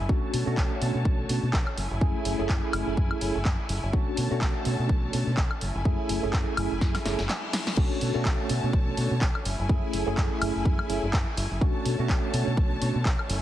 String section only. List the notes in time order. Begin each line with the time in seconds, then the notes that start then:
0.10 D3 C#5 A5
1.78 A3 E4 G#5
3.94 D3 C#5 A5
5.62 A3 E4 G#5
7.77 D3 C#5 A5
9.45 A3 E4 G#5
11.61 D3 C#5 A5
13.30 A3 E4 G#5